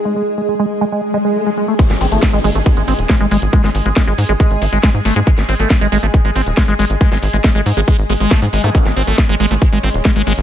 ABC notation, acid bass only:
X:1
M:4/4
L:1/16
Q:1/4=138
K:none
V:1 name="Acid bass" clef=bass
_A, A, z A, A, A, z A, A, z A, A, =A, _A, A, =A, | _A, z C =A, z _A, A, =A, z _A, C z A, A, A, z | _A, A, z A, A, A, z A, A,2 =A, _A, A, z =A, _A, | _A, z C =A, z _A, A, =A, z _A, C z A, A, A, z |
_A, A, z A, A, A, z A, A, z A, A, =A, _A, A, =A, | _A, z C =A, z _A, A, =A, z _A, C z A, A, A, z |]